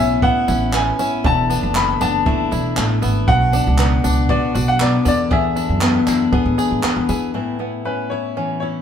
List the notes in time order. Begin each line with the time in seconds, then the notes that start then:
Already playing: A2 E3 B3 C#4 E4 E5
0.00 B1 C#4
0.22 B3 E4 F#5, kick
0.48 A1 C#4 E4, tambourine
0.73 B3 G#5, clap
0.99 C#4 E4, tambourine
1.24 E1 E2 D3 E4 A5, kick
1.50 B3 D4, tambourine
1.63 F#1
1.75 A3 B5, clap
2.01 F#1 B3 D4 A5, tambourine
2.26 A3 E4, kick
2.51 E1 D4 E4, tambourine
2.77 A1 A3, clap
3.02 G#1 B3 E4, tambourine
3.28 B1 B2 F#4 F#5, kick
3.52 D4, tambourine
3.67 C#2
3.78 B3, clap
4.04 C#2 D4, tambourine
4.29 B3 F#4 D5, kick
4.55 B1 D4 F#4, tambourine
4.68 F#5
4.80 B3 D5, clap
5.05 E2 D3 D5, tambourine
5.31 E2 D3 G#4 E5, kick
5.56 D4 E4, tambourine
5.69 F#2
5.81 B3, clap
6.07 F#2 D4 E4, clap, tambourine
6.32 E2 B3 G#4, kick
6.46 A2
6.58 D4 G#4, tambourine
6.71 G#2
6.83 B3, muted upright bass stroke, clap
6.97 E2
7.09 E3 E4 G#4, tambourine
7.34 A2 E3 E4
7.59 B3
7.85 C#4 B4
8.10 E4 C#5
8.37 E3 C#4
8.60 C#4 E4 C#5